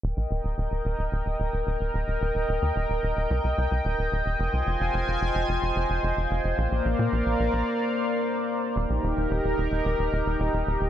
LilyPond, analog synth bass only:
\new Staff \with { instrumentName = "Analog synth bass" } { \clef bass \time 4/4 \key ees \major \tempo 4 = 110 ees,,16 bes,,16 ees,,16 ees,,16 ees,,16 ees,,16 ees,,16 ees,,16 ees,,16 ees,,16 ees,,16 ees,,16 ees,,16 ees,,16 ees,,16 ees,,16 | ees,,16 ees,,16 ees,,16 ees,16 ees,,16 ees,,16 ees,,16 ees,,16 c,16 c,16 c,16 c,16 ees,,16 ees,,16 ees,,16 ees,,16 | f,,16 c,16 f,,16 f,,16 f,,16 f,,16 f,,16 f,,16 f,,16 f,,16 f,,16 f,,16 f,,16 f,,16 f,,16 f,,16 | bes,,16 bes,,16 bes,,16 bes,16 bes,,16 bes,,16 bes,,16 bes,,16 r2 |
ees,,16 bes,,16 ees,,16 ees,,16 ees,,16 ees,,16 ees,,16 ees,,16 ees,,16 ees,,16 ees,,16 ees,,16 ees,,16 ees,,16 ees,,16 ees,,16 | }